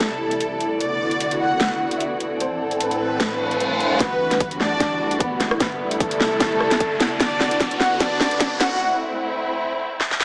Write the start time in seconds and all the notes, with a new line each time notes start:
Already playing: C2 C3 G3 E4 A4 D5, downlifter
0.01 snare, closed hi-hat
0.31 closed hi-hat
0.40 closed hi-hat
0.60 closed hi-hat
0.80 D2 D3 B3 F#4 D5, closed hi-hat
1.11 closed hi-hat
1.20 closed hi-hat
1.29 F#5, closed hi-hat
1.40 F#5
1.60 snare, closed hi-hat
1.91 closed hi-hat
2.00 E5, closed hi-hat
2.20 closed hi-hat
2.40 A2 E3 A3 C4 A4 C5, closed hi-hat
2.50 D4
2.71 G3, closed hi-hat
2.80 B4, closed hi-hat
2.91 closed hi-hat
3.13 E5
3.20 snare, closed hi-hat, reverse cymbal
3.51 closed hi-hat
3.60 closed hi-hat
3.80 closed hi-hat
4.00 E2 E3 G3 B3 E4 F#4 B4, kick, snare, closed hi-hat, riser
4.09 A4
4.31 D5, snare, closed hi-hat
4.40 kick, closed hi-hat
4.51 closed hi-hat
4.60 D4 D5, snare
4.80 kick, snare, closed hi-hat
5.11 closed hi-hat
5.20 B3 B4, kick, closed hi-hat
5.40 snare, closed hi-hat
5.51 cross-stick
5.60 C2 C3 G3 B3 E4 B4, kick, snare, closed hi-hat
5.91 closed hi-hat
6.00 A3 A4, kick, closed hi-hat
6.11 closed hi-hat
6.17 F#5, snare
6.40 kick, snare, closed hi-hat
6.60 cross-stick
6.71 snare, closed hi-hat
6.80 kick, closed hi-hat
7.00 snare, closed hi-hat
7.20 D2 D3 B3 D4 F#4 D5, kick, snare, closed hi-hat
7.40 snare
7.51 closed hi-hat
7.60 kick, snare, closed hi-hat
7.71 closed hi-hat
7.80 F#4 F#5, snare
8.00 D4 D5, kick, snare, closed hi-hat
8.20 snare
8.31 closed hi-hat
8.40 kick, snare, closed hi-hat
8.60 F#4 F#5, snare, closed hi-hat
8.80 A2 A3 C4 E4
10.00 snare
10.11 snare
10.20 snare